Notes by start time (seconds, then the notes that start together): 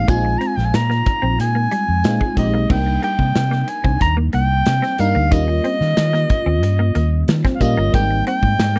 Already playing: G#3 C4 D#4 G4 F5
0.08 A#1 G#3 A#3 C4 D#4 F4 G#5, kick, closed hi-hat
0.25 muted clean electric guitar stroke
0.38 C4 A#5, closed hi-hat
0.47 G#5
0.56 A#1 G5, snare
0.65 G#5
0.74 A#2 A#5, snare, closed hi-hat
0.90 A#3, snare
1.06 muted clean electric guitar stroke, kick, closed hi-hat
1.22 A#1 C4
1.39 A#2 G#5, muted clean electric guitar stroke, closed hi-hat
1.55 A#3
1.71 G3, closed hi-hat
1.89 F2
2.04 A#2 G#3 C4 D#4 F4, snare, closed hi-hat
2.21 G#3, kick
2.37 A#1 G#3 C4 D#4 G4 D#5, muted clean electric guitar stroke, kick, closed hi-hat
2.54 B1 A#3
2.69 C2 G3 A#3 C4 D4 D#4 G5, kick, crash
2.86 muted clean electric guitar stroke
3.02 A#3 G5, closed hi-hat
3.19 C3, kick
3.35 C3, snare, closed hi-hat
3.51 A#3, snare
3.62 G5
3.68 G#5, muted clean electric guitar stroke, closed hi-hat
3.84 C2 C4, kick
4.00 D#2 A#5, muted clean electric guitar stroke, kick, closed hi-hat
4.17 A#3
4.33 C2 A#3 G5, closed hi-hat
4.66 C3, snare, closed hi-hat
4.82 C4, snare
4.98 G2 G3 A#3 D4 D#4 F5, muted clean electric guitar stroke, closed hi-hat
5.15 D2 A#3
5.31 D#2 G3 A#3 C#4 D#4 F4 D#5, kick, closed hi-hat
5.48 muted clean electric guitar stroke
5.64 C4, closed hi-hat
5.81 D#3, snare
5.97 D#3, snare, closed hi-hat
6.13 A#3, snare
6.30 muted clean electric guitar stroke, kick, closed hi-hat
6.46 D#2 C4
6.63 G2, muted clean electric guitar stroke, closed hi-hat
6.79 A#3
6.95 D#2 A#3, closed hi-hat
7.28 D#3, snare, closed hi-hat
7.45 C4, kick, snare
7.55 F5
7.60 A#2 G3 A#3 C#4 F4 D#5, muted clean electric guitar stroke, kick, closed hi-hat
7.77 G1 A#3
7.93 G#1 G3 G#3 A#3 C4 D#4 G5, kick, closed hi-hat
8.11 muted clean electric guitar stroke
8.27 C4 G5, closed hi-hat
8.43 G#2, kick
8.59 G#2, snare, closed hi-hat
8.76 A#3, snare